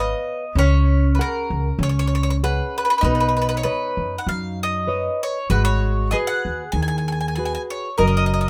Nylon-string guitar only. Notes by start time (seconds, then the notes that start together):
Already playing: B4 C#5 F5
0.57 C#4
1.19 G#4 A#4 F#5
1.80 C#4
2.43 G#4 C#5 F#5
3.06 B3
3.65 B4 C#5 D#5
4.27 F#3
4.87 B4 C#5 D#5
5.50 G#3
6.13 F#4 G#4 B4
6.75 D#3
7.38 F#4 G#4 B4
7.99 F#3